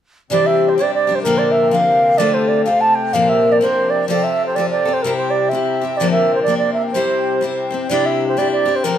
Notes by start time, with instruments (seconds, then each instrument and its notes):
0.30 steel-string acoustic guitar C3 E3 G3 C4 D4 G4, accordion C3 C4, flute D5
0.46 flute E5
0.69 flute C5
0.78 steel-string acoustic guitar G3 C4 D4 G4, flute D5
0.94 flute D5
1.07 steel-string acoustic guitar G3 C4 D4 G4
1.15 flute C5
1.23 steel-string acoustic guitar A#2 D3 F3 A#3, flute A#4
1.27 steel-string acoustic guitar D4 A#4
1.38 flute D5
1.52 flute E5
1.71 steel-string acoustic guitar F3 A#3 D4 A#4, flute F5
2.18 steel-string acoustic guitar D3 A3 C4 F4 A4, flute D5
2.34 flute C5
2.48 flute D5
2.65 steel-string acoustic guitar A3 C4 F4 A4, flute F5
2.81 flute A5
2.95 flute G5
3.13 steel-string acoustic guitar A#2 D3 F3 A#3 D4 A#4, flute F5
3.29 flute E5
3.52 flute D5
3.61 steel-string acoustic guitar F3 A#3 D4 A#4, flute C5
3.90 flute D5
4.08 accordion C3 C4, steel-string acoustic guitar F3 C4 F4 A4, flute D5
4.24 flute E5
4.46 flute C5
4.55 steel-string acoustic guitar F3 C4 F4, flute D5
4.60 steel-string acoustic guitar A4
4.70 flute D5
4.85 steel-string acoustic guitar C4 F4 A4
4.93 flute C5
5.02 steel-string acoustic guitar C3 G3 C4, flute A#4
5.07 steel-string acoustic guitar E4 G4
5.17 flute C5
5.30 flute D5
5.49 steel-string acoustic guitar G3 C4, flute E5
5.55 steel-string acoustic guitar E4 G4
5.81 steel-string acoustic guitar C4 E4 G4
5.97 steel-string acoustic guitar A#2 D3 F3, flute D5
6.02 steel-string acoustic guitar A#3 D4 A#4
6.11 flute E5
6.35 flute C5
6.43 steel-string acoustic guitar F3, flute D5
6.48 steel-string acoustic guitar A#3 D4 A#4
6.58 flute D5
6.73 flute E5
6.92 steel-string acoustic guitar C3 G3 C4, flute C5
6.96 steel-string acoustic guitar E4 C5
7.41 steel-string acoustic guitar G3 C4 E4 C5
7.71 steel-string acoustic guitar C4 E4 C5
7.89 accordion C3 C4, steel-string acoustic guitar C3 G3 D4 E4 G4, flute D5
8.06 flute E5
8.28 flute C5
8.37 steel-string acoustic guitar G3 D4 E4 G4, flute D5
8.52 flute D5
8.66 steel-string acoustic guitar D4 E4 G4
8.76 flute C5
8.84 steel-string acoustic guitar A#2 D3 F3 A#3 D4 A#4, flute A#4